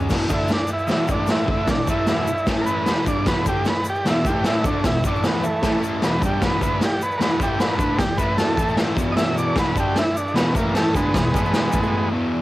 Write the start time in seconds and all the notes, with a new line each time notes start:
Already playing: G#3 C#4
0.09 E2 B2 E3, kick, snare, crash, shaker
0.29 D3 A3 D4 D#4, kick, shaker
0.34 E4
0.48 muted distorted electric guitar stroke, snare, crash, shaker
0.53 D4
0.67 shaker
0.73 E4
0.79 shaker
0.87 E2 B2 E3 D#4, snare, crash, shaker
0.92 E4
1.07 A2 E3 A3, kick, shaker
1.12 D4
1.27 snare, crash, shaker
1.31 E4
1.47 D3 A3 D4, kick
1.51 E4
1.67 E2 B2 D4, kick, snare, crash, shaker
1.87 A2 E3 A3 E4, kick, shaker
2.07 E2 B2 E3 E4, snare, crash, shaker
2.27 muted distorted electric guitar stroke, shaker
2.37 shaker
2.47 A2 E3 A3, kick, snare, crash, shaker
2.61 A#4
2.66 B4, shaker
2.86 E2 B2 E3, snare, crash, shaker
3.06 G2 D3 G3 D5, kick, shaker
3.26 E2 B2 E3 B4, kick, snare, crash, shaker
3.46 D3 A3 D4 G4, kick, shaker
3.65 muted distorted electric guitar stroke, snare, crash, shaker
3.70 B4
3.85 shaker
3.90 G4
3.95 shaker
4.05 E2 B2 E3, snare, crash, shaker
4.10 E4
4.25 A2 E3 A3 G4, kick, shaker
4.44 E4, snare, crash, shaker
4.64 D3 A3 D4, kick, shaker
4.84 E2 B2 E4, kick, snare, crash, shaker
5.04 A2 E3 A3 D4, kick, shaker
5.15 shaker
5.24 E2 B2 E3, snare, crash, shaker
5.28 B3
5.43 E3 A3, muted distorted electric guitar stroke, shaker
5.62 A2 E3 A3, kick, snare, crash, shaker
5.83 shaker
6.02 E2 B2 E3 B4, snare, crash, shaker
6.21 G2 D3 G3, kick, shaker
6.26 G4
6.41 E2 B2 E3, kick, snare, crash, shaker
6.45 B4
6.61 D3 A3 D4 B4, kick, shaker
6.81 muted distorted electric guitar stroke, snare, crash, shaker
6.85 G4
7.01 B4, shaker
7.11 shaker
7.18 E2 B2 A#4, snare, crash, shaker
7.22 E3 B4
7.39 A2 E3 A3 G4, kick, shaker
7.60 B4, snare, crash, shaker
7.73 A#4
7.78 D3 A3 D4 B4, kick, shaker
7.98 E2 B2 G4, kick, snare, crash, shaker
8.18 A2 E3 A3 B4, kick, shaker
8.37 E2 B2 E3 A4, snare, crash, shaker
8.57 A2 E3 A3, kick, shaker
8.68 shaker
8.77 snare, crash, shaker
8.97 E2 B2 E3, kick, shaker
9.12 D#5
9.17 E5, snare, crash, shaker
9.38 D5, shaker
9.56 E2 B2 E3 B4, kick, snare, crash, shaker
9.75 D3 A3 D4, kick, shaker
9.80 G4
9.96 E4, muted distorted electric guitar stroke, snare, crash, shaker
10.16 D4, shaker
10.27 shaker
10.34 E2 B2 E3 B3, snare, crash, shaker
10.55 A2 E3 A3 A#3, kick, shaker
10.75 A3, snare, crash, shaker
10.95 D3 G#3 A3 B3 D4, kick, shaker
11.14 E2 B2, kick, snare, crash, shaker
11.33 A2 E3 A3, kick, shaker
11.45 shaker
11.54 E2 B2 E3, snare, crash, shaker
11.72 A2 E3 A3, kick, shaker
11.83 shaker
12.12 E2 B2 E3